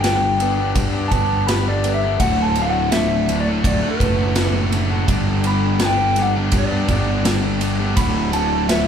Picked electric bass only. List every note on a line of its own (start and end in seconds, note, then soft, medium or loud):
0.00 0.72 G1 medium
0.75 1.10 G2 medium
1.11 2.16 G1 medium
2.20 3.60 D1 medium
3.64 3.81 D1 medium
4.00 5.05 F#1 medium
5.08 6.49 G1 loud
6.53 6.87 G2 medium
6.89 7.94 G1 loud
7.97 8.88 D1 medium